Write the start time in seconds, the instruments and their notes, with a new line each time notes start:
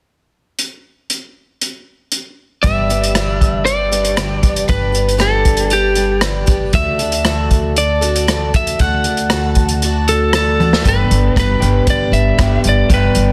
0.59 closed hi-hat
1.10 closed hi-hat
1.61 closed hi-hat
2.12 closed hi-hat
2.63 upright bass G1, twelve-string acoustic guitar G2 D3 G3 B3 D4 G4, lead electric guitar E5, kick, closed hi-hat
2.89 twelve-string acoustic guitar G3 B3 D4 G4, closed hi-hat
3.03 closed hi-hat
3.15 twelve-string acoustic guitar G2 D3 G3 B3 D4 G4, cross-stick, closed hi-hat
3.41 kick, closed hi-hat
3.65 twelve-string acoustic guitar G3 B3 D4 G4, lead electric guitar D5, closed hi-hat
3.92 twelve-string acoustic guitar G3 B3 D4 G4, closed hi-hat
4.05 closed hi-hat
4.16 twelve-string acoustic guitar G2 D3 G3 B3 D4 G4, cross-stick, closed hi-hat
4.43 twelve-string acoustic guitar G3 B3 D4 G4, kick, closed hi-hat
4.56 closed hi-hat
4.68 upright bass G1, twelve-string acoustic guitar G2 D3 G3 B3 D4 G4, lead electric guitar B4, kick, closed hi-hat
4.92 twelve-string acoustic guitar G3 B3 D4 G4, closed hi-hat
5.09 closed hi-hat
5.17 twelve-string acoustic guitar G2 D3 G3 B3 D4 G4, cross-stick, closed hi-hat
5.21 lead electric guitar A4
5.45 kick, closed hi-hat
5.57 closed hi-hat
5.70 twelve-string acoustic guitar G3 B3 D4 G4, lead electric guitar G4, closed hi-hat
5.95 twelve-string acoustic guitar G3 B3 D4 G4, closed hi-hat
6.21 twelve-string acoustic guitar G2 D3 G3 B3 D4 G4, cross-stick, closed hi-hat
6.46 twelve-string acoustic guitar G3 B3 D4 G4, kick, closed hi-hat
6.73 upright bass D2, twelve-string acoustic guitar D3 A3 D4 F#4 A4, lead electric guitar E5, kick, closed hi-hat
6.99 twelve-string acoustic guitar D4 F#4 A4, closed hi-hat
7.12 closed hi-hat
7.25 twelve-string acoustic guitar D3 A3 D4 F#4 A4, cross-stick, closed hi-hat
7.51 kick, closed hi-hat
7.76 twelve-string acoustic guitar A3 D4 F#4 A4, lead electric guitar D5, closed hi-hat
8.01 twelve-string acoustic guitar D4 F#4 A4, closed hi-hat
8.16 closed hi-hat
8.27 twelve-string acoustic guitar D3 A3 D4 F#4 A4, cross-stick, closed hi-hat
8.54 twelve-string acoustic guitar F#4 A4, lead electric guitar E5, kick, closed hi-hat
8.67 closed hi-hat
8.79 upright bass D2, twelve-string acoustic guitar D3 A3 D4 F#4 A4, lead electric guitar F#5, kick, closed hi-hat
9.04 twelve-string acoustic guitar F#4 A4, closed hi-hat
9.09 twelve-string acoustic guitar D4
9.17 closed hi-hat
9.30 twelve-string acoustic guitar D3 A3 D4 F#4 A4, cross-stick, closed hi-hat
9.55 kick, closed hi-hat
9.69 closed hi-hat
9.82 twelve-string acoustic guitar A3 D4 F#4 A4, closed hi-hat
10.08 twelve-string acoustic guitar D4 F#4 A4, lead electric guitar A4, closed hi-hat
10.33 twelve-string acoustic guitar D3 A3 D4 F#4 A4, lead electric guitar A4, cross-stick, closed hi-hat
10.60 twelve-string acoustic guitar D4 F#4 A4, high tom
10.73 snare
10.85 upright bass G1, twelve-string acoustic guitar G2 D3 G3 D4 G4 B4, clean electric guitar B3, lead electric guitar B4, kick, closed hi-hat
11.11 upright bass G1, closed hi-hat
11.36 upright bass G1, twelve-string acoustic guitar G3 D4 G4 B4, lead electric guitar B4, kick, cross-stick, closed hi-hat
11.62 upright bass G1, twelve-string acoustic guitar G3 D4 G4 B4, clean electric guitar B3, closed hi-hat
11.87 upright bass G1, twelve-string acoustic guitar G2 D3 G3 D4 G4 B4, lead electric guitar D5, kick, closed hi-hat
12.12 upright bass G1, lead electric guitar E5, closed hi-hat
12.38 upright bass G1, twelve-string acoustic guitar G3 D4 G4 B4, clean electric guitar B3, kick, cross-stick, closed hi-hat
12.64 upright bass G1, closed hi-hat
12.69 lead electric guitar D5
12.90 upright bass G1, twelve-string acoustic guitar G2 D3 G3 D4 G4 B4, clean electric guitar B3, kick, closed hi-hat
12.94 lead electric guitar B4
13.15 upright bass G1, closed hi-hat